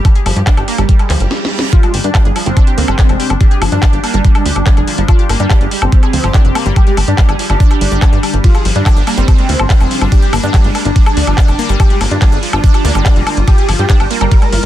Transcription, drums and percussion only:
0.05 kick, closed hi-hat, high woodblock
0.15 closed hi-hat
0.26 open hi-hat, high woodblock
0.36 closed hi-hat
0.47 kick, clap, closed hi-hat
0.57 closed hi-hat, high woodblock
0.68 open hi-hat
0.78 closed hi-hat, high woodblock
0.89 kick, closed hi-hat
0.99 closed hi-hat, high woodblock
1.10 clap, open hi-hat
1.20 closed hi-hat
1.31 snare
1.45 snare
1.59 snare
1.73 kick, closed hi-hat
1.83 closed hi-hat, high woodblock
1.94 open hi-hat
2.04 closed hi-hat
2.15 kick, clap, closed hi-hat, high woodblock
2.25 closed hi-hat
2.36 open hi-hat, high woodblock
2.46 closed hi-hat
2.57 kick, closed hi-hat, high woodblock
2.67 closed hi-hat
2.78 open hi-hat
2.88 closed hi-hat, high woodblock
2.99 kick, clap, closed hi-hat
3.09 closed hi-hat, high woodblock
3.20 open hi-hat
3.30 closed hi-hat, high woodblock
3.41 kick, closed hi-hat
3.51 closed hi-hat
3.62 open hi-hat, high woodblock
3.72 closed hi-hat
3.83 kick, clap, closed hi-hat, high woodblock
3.93 closed hi-hat
4.04 open hi-hat, high woodblock
4.14 closed hi-hat
4.25 kick, closed hi-hat
4.35 closed hi-hat, high woodblock
4.46 open hi-hat
4.56 closed hi-hat, high woodblock
4.66 kick, clap, closed hi-hat
4.77 closed hi-hat, high woodblock
4.87 open hi-hat
4.98 closed hi-hat
5.08 kick, closed hi-hat, high woodblock
5.19 closed hi-hat
5.29 open hi-hat, high woodblock
5.40 closed hi-hat
5.50 kick, clap, closed hi-hat, high woodblock
5.61 closed hi-hat
5.71 open hi-hat
5.82 closed hi-hat, high woodblock
5.92 kick, closed hi-hat
6.03 closed hi-hat, high woodblock
6.13 open hi-hat
6.24 high woodblock
6.34 kick, clap, closed hi-hat
6.45 closed hi-hat
6.55 open hi-hat, high woodblock
6.66 closed hi-hat
6.76 kick, closed hi-hat, high woodblock
6.87 closed hi-hat
6.97 open hi-hat, high woodblock
7.08 closed hi-hat
7.18 kick, clap, closed hi-hat
7.29 closed hi-hat, high woodblock
7.39 open hi-hat
7.50 closed hi-hat, high woodblock
7.60 kick, closed hi-hat
7.71 closed hi-hat, high woodblock
7.81 open hi-hat
7.92 closed hi-hat
8.02 kick, clap, closed hi-hat, high woodblock
8.13 closed hi-hat
8.23 open hi-hat, high woodblock
8.34 closed hi-hat
8.44 kick, closed hi-hat, ride
8.55 closed hi-hat, high woodblock
8.65 open hi-hat
8.76 closed hi-hat
8.86 kick, clap, closed hi-hat, ride, high woodblock
8.97 closed hi-hat
9.07 open hi-hat, high woodblock
9.18 closed hi-hat
9.28 kick, closed hi-hat, ride, high woodblock
9.39 closed hi-hat
9.49 open hi-hat
9.60 closed hi-hat, high woodblock
9.70 kick, clap, closed hi-hat, ride
9.80 closed hi-hat, high woodblock
9.91 open hi-hat
10.01 closed hi-hat, high woodblock
10.12 kick, closed hi-hat, ride
10.22 closed hi-hat
10.33 open hi-hat, high woodblock
10.43 closed hi-hat
10.54 kick, clap, closed hi-hat, ride, high woodblock
10.64 closed hi-hat
10.75 open hi-hat, high woodblock
10.85 closed hi-hat
10.96 kick, closed hi-hat, ride
11.06 closed hi-hat, high woodblock
11.17 open hi-hat
11.27 closed hi-hat, high woodblock
11.38 kick, clap, closed hi-hat, ride
11.48 closed hi-hat, high woodblock
11.59 open hi-hat
11.69 closed hi-hat
11.80 kick, closed hi-hat, ride, high woodblock
11.90 closed hi-hat
12.01 open hi-hat, high woodblock
12.11 closed hi-hat
12.22 kick, clap, closed hi-hat, ride, high woodblock
12.32 closed hi-hat
12.43 open hi-hat
12.53 closed hi-hat, high woodblock
12.64 kick, closed hi-hat, ride
12.74 closed hi-hat, high woodblock
12.85 open hi-hat
12.95 closed hi-hat, high woodblock
13.06 kick, clap, closed hi-hat, ride
13.16 closed hi-hat
13.27 open hi-hat, high woodblock
13.37 closed hi-hat
13.48 kick, closed hi-hat, ride, high woodblock
13.58 closed hi-hat
13.69 open hi-hat, high woodblock
13.79 closed hi-hat
13.90 kick, clap, closed hi-hat, ride
14.00 closed hi-hat, high woodblock
14.11 open hi-hat
14.21 closed hi-hat, high woodblock
14.31 kick, closed hi-hat, ride
14.42 closed hi-hat, high woodblock
14.52 open hi-hat

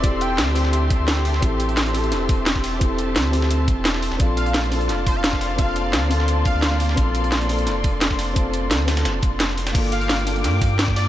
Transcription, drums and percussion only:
0.04 kick, closed hi-hat
0.21 closed hi-hat
0.38 snare, closed hi-hat
0.55 closed hi-hat, open hi-hat
0.65 snare
0.73 closed hi-hat
0.90 kick, closed hi-hat
1.08 snare, closed hi-hat
1.17 snare
1.25 closed hi-hat, open hi-hat
1.34 snare
1.42 kick, closed hi-hat
1.60 closed hi-hat
1.69 closed hi-hat
1.77 snare, closed hi-hat
1.86 closed hi-hat
1.94 closed hi-hat, open hi-hat
2.04 closed hi-hat
2.12 snare, closed hi-hat
2.29 kick, closed hi-hat, open hi-hat
2.46 snare, closed hi-hat
2.56 kick, snare
2.64 snare, closed hi-hat, open hi-hat
2.81 kick, closed hi-hat
2.98 closed hi-hat
3.16 snare, closed hi-hat
3.33 closed hi-hat, open hi-hat
3.42 snare
3.50 closed hi-hat
3.68 kick, closed hi-hat
3.85 snare, closed hi-hat
3.94 snare
4.02 closed hi-hat, open hi-hat
4.12 snare
4.20 kick, closed hi-hat
4.37 closed hi-hat
4.46 closed hi-hat
4.54 snare, closed hi-hat
4.64 closed hi-hat
4.72 closed hi-hat, open hi-hat
4.81 closed hi-hat
4.89 snare, closed hi-hat
5.06 kick, closed hi-hat, open hi-hat
5.24 snare, closed hi-hat
5.33 kick, snare
5.41 snare, closed hi-hat, open hi-hat
5.58 kick, closed hi-hat
5.76 closed hi-hat
5.93 snare, closed hi-hat
6.11 closed hi-hat, open hi-hat
6.20 snare
6.28 closed hi-hat
6.45 kick, closed hi-hat
6.62 snare, closed hi-hat
6.72 snare
6.80 closed hi-hat, open hi-hat
6.89 snare
6.97 kick, closed hi-hat
7.15 closed hi-hat
7.24 closed hi-hat
7.32 snare, closed hi-hat
7.41 closed hi-hat
7.49 closed hi-hat, open hi-hat
7.59 closed hi-hat
7.67 snare, closed hi-hat
7.84 kick, closed hi-hat, open hi-hat
8.01 snare, closed hi-hat
8.10 kick, snare
8.19 snare, closed hi-hat, open hi-hat
8.36 kick, closed hi-hat
8.53 closed hi-hat
8.71 snare, closed hi-hat
8.88 snare, closed hi-hat, open hi-hat
8.97 snare, closed hi-hat
9.05 snare, closed hi-hat
9.23 kick, closed hi-hat
9.40 snare, closed hi-hat
9.49 snare
9.57 closed hi-hat, open hi-hat
9.67 snare, closed hi-hat
9.75 kick, closed hi-hat, crash, ride
9.92 closed hi-hat, ride
10.01 closed hi-hat
10.09 snare, closed hi-hat, ride
10.19 closed hi-hat
10.27 closed hi-hat, open hi-hat, ride
10.36 closed hi-hat
10.44 snare, closed hi-hat, ride
10.62 kick, closed hi-hat, open hi-hat, ride
10.79 snare, closed hi-hat, ride
10.88 kick, snare
10.96 snare, closed hi-hat, open hi-hat, ride

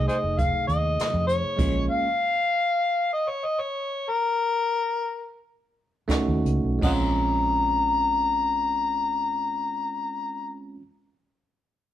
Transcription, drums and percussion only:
0.09 closed hi-hat
0.39 kick, closed hi-hat
0.69 closed hi-hat
0.99 snare, closed hi-hat
1.29 closed hi-hat
1.59 kick, closed hi-hat, crash
6.09 kick, snare, closed hi-hat
6.46 closed hi-hat
6.82 kick, crash

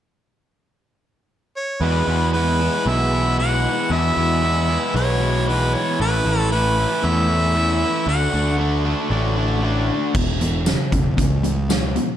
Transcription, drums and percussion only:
10.15 kick, crash
10.41 closed hi-hat
10.66 snare, closed hi-hat, tambourine
10.92 kick, closed hi-hat
11.18 kick, closed hi-hat
11.44 closed hi-hat
11.70 snare, closed hi-hat, tambourine
11.96 closed hi-hat

